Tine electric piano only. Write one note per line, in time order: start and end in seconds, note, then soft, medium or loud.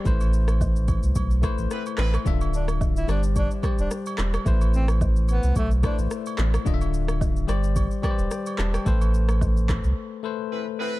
0.04 1.09 A3 medium
0.04 1.09 E4 medium
0.04 1.10 B4 medium
0.04 1.10 C5 loud
1.42 2.21 A3 medium
1.42 2.21 E4 medium
1.42 2.22 B4 medium
1.42 2.22 C5 loud
2.25 3.08 D3 medium
2.25 3.08 D4 medium
2.25 3.09 F4 medium
2.25 3.09 E5 loud
3.07 3.60 G3 medium
3.07 3.60 G4 medium
3.07 3.61 C5 medium
3.07 3.61 D5 medium
3.62 4.41 G3 medium
3.62 4.41 G4 medium
3.62 4.42 C5 medium
3.62 4.42 D5 medium
4.45 5.50 A3 medium
4.45 5.50 E4 medium
4.45 5.50 B4 medium
4.45 5.51 C5 loud
5.82 6.61 A3 medium
5.82 6.61 E4 medium
5.82 6.62 B4 medium
5.82 6.62 C5 medium
6.65 7.48 D3 medium
6.65 7.49 D4 medium
6.65 7.49 F4 medium
6.65 6.74 D#5 medium
6.74 7.53 E5 loud
7.47 8.00 G3 loud
7.47 8.00 G4 medium
7.47 8.01 C5 medium
7.47 8.01 D5 loud
8.02 8.81 G3 medium
8.02 8.82 G4 medium
8.02 8.11 B4 medium
8.02 8.82 D5 loud
8.10 8.85 C5 medium
8.31 8.57 G5 medium
8.59 8.73 A5 medium
8.74 9.00 G5 medium
8.85 9.90 A3 medium
8.85 9.90 A4 medium
8.85 9.91 B4 medium
8.85 9.91 C5 loud
10.23 11.00 A3 medium
10.23 11.00 A4 medium
10.23 11.00 B4 medium
10.23 11.00 C5 loud